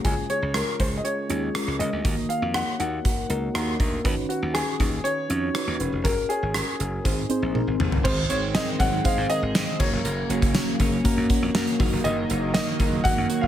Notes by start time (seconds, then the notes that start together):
0.04 C#2 C#3 G#3 C#4 F4 G#4, kick, closed hi-hat
0.29 G#3 C#4 F4 G#4 C#5, closed hi-hat
0.42 C#2
0.54 G#3 C#4 F4 A#4, cross-stick, closed hi-hat
0.79 C#2 G#3 C#4 F4 G#4 C5, kick, closed hi-hat
0.97 D#5
1.04 G#3 C#4 F4 G#4 C#5, closed hi-hat
1.29 D#2 G#3 C#4 F4 G#4, closed hi-hat
1.54 G#3 C#4 F4 A#4, cross-stick, closed hi-hat
1.67 C#2
1.79 C#2 G#3 C#4 G#4 D#5, closed hi-hat
1.93 D2
2.04 D#2 D#3 A#3 D#4 F#4 A#4, kick, closed hi-hat
2.29 A#3 D#4 F#4 F5, closed hi-hat
2.42 F2
2.54 A#3 D#4 F#4 C#5 F#5, cross-stick, closed hi-hat
2.79 D#2 A#3 D#4 F#4 A#4 F#5, closed hi-hat
3.04 A#3 D#4 F#4 A#4, kick, closed hi-hat
3.29 C#2 A#3 D#4 F#4 A#4, closed hi-hat
3.54 D#2 A#3 D#4 F#4 A#4, cross-stick, closed hi-hat
3.79 D2 A#3 D#4 F#4 A#4, kick, closed hi-hat
4.04 D#2 D#3 C#4 D#4 F#4 B4, kick, closed hi-hat
4.29 C#4 D#4 F#4 B4, closed hi-hat
4.42 D#2
4.54 C#4 D#4 F#4 G#4 B4, cross-stick, closed hi-hat
4.79 D#2 C#4 D#4 F#4 B4, kick, closed hi-hat
5.04 C#4 D#4 F#4 B4 C#5, closed hi-hat
5.29 F2 C#4 D#4 F#4 C#5, closed hi-hat
5.54 C#4 D#4 F#4 B4, cross-stick, closed hi-hat
5.67 D#2
5.79 E1 C#4 D#4 F#4 B4, closed hi-hat
5.92 F1
6.04 F#1 C#4 F#4 G#4 A#4, kick, closed hi-hat
6.29 C#4 F#4 G#4 C#5, closed hi-hat
6.42 G#1
6.54 C#4 F#4 G#4 A#4, cross-stick, closed hi-hat
6.79 F#1 C#4 F#4 G#4 A#4, closed hi-hat
7.04 G#1 G#2 C4 D#4 G#4 C5, kick, closed hi-hat
7.29 C4 D#4 G#4 C5, muted slap bass stroke, closed hi-hat
7.42 A#1
7.54 C4 D#4 G#4 A#4, high tom
7.67 G#1
7.79 G1 C4 D#4 G#4 C5, mid tom
7.92 floor tom
8.04 G#1 G#2 D#3 G#3 C4 D#4 G#4 C5, kick, crash, tambourine
8.29 G#1 C4 D#4 G#4 C5 C#5, closed hi-hat, tambourine
8.54 G#3 C4 D#4 G#4 A#4 D#5, snare, closed hi-hat, tambourine
8.79 G#1 C4 D#4 G#4 F#5, kick, closed hi-hat, tambourine
8.92 tambourine
9.04 G#3 C4 D#4 G#4 C5 F5, kick, closed hi-hat, tambourine
9.17 G#2
9.29 C4 D#4 G#4 A#4 D#5, closed hi-hat, tambourine
9.42 G#1
9.54 G#2 C4 D#4 G#4 D#5, snare, closed hi-hat, tambourine
9.79 F#1 C#3 F#3 A#3 C#4 F#4 A#4 C#5, kick, tambourine, crash
9.92 F1, tambourine
10.05 F#1 A#3, closed hi-hat, tambourine
10.29 F#1 A#3 C#4 F#4 A#4, closed hi-hat, tambourine
10.42 kick, closed hi-hat, tambourine
10.54 A#3 C#4 F#4 C#5, snare, closed hi-hat, tambourine
10.79 F#1 A#3 C#4 F#4 A#4, kick, closed hi-hat, tambourine
10.92 tambourine
11.04 A#3 C#4 F#4 A#4, kick, closed hi-hat, tambourine
11.17 F#2, tambourine
11.29 A#3 C#4 F#4 A#4, kick, closed hi-hat, tambourine
11.42 F2
11.54 F#2 A#3 C#4 F#4 A#4, snare, closed hi-hat, tambourine
11.67 closed hi-hat
11.79 F#1 D#3 A#3 D#4 F#4 A#4, kick, open hi-hat, tambourine
11.93 F1
12.04 F#1 D#3 D#5, closed hi-hat, tambourine
12.29 F#1 A#3 D#4 F#4 A#4, closed hi-hat, tambourine
12.54 A#3 D#4 F#4 A#4 D#5, snare, closed hi-hat, tambourine
12.79 F#1 A#3 D#4 F#4 A#4, kick, closed hi-hat, tambourine
12.92 tambourine
13.04 A#3 D#4 F#4 A#4 F#5, kick, closed hi-hat, tambourine
13.18 F#2
13.29 A#3 D#4 F#4 A#4, closed hi-hat, tambourine
13.41 F#1 F5